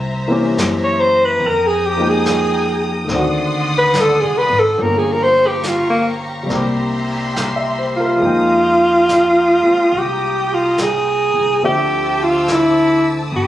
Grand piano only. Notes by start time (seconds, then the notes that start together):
0.28 E3 A#3 C4 C#4
0.32 G4
1.96 F3 G#3 A#3 D#4
2.01 G5
3.05 D#3 A3
3.10 C4 D4
3.16 F#4
4.77 F3 G3 A#3 C#4 G4
6.43 C3 G3
6.49 A#3 C4
6.54 G4
7.34 G5
7.56 E5
7.78 C5
8.00 A#4
8.16 F3 G#3
8.21 A#3 D#4
8.26 G5
9.62 G#3 C4
9.66 F4
11.63 D3 F3 A3 C4 E5